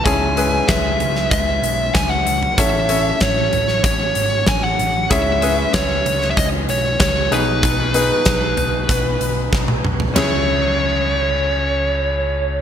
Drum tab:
RD |----------------|----------------|----------------|----------------|
HH |x-x-x-x-x-x-x-x-|x-x-x-x-x-x-x-x-|x-x-x-x-x-x-x-x-|x-x-x-x-x-x-----|
SD |----o--o----o---|----o--o----o---|----o--o----o---|----o-------o---|
T1 |----------------|----------------|----------------|-------------o--|
T2 |----------------|----------------|----------------|--------------o-|
FT |------o--------o|------o---------|------o---------|------o--------o|
BD |o---o---o---o---|o---o---o---o---|o---o---o---o---|o---o---o---o---|

RD |b---------------|
HH |----------------|
SD |o---------------|
T1 |----------------|
T2 |----------------|
FT |o---------------|
BD |----------------|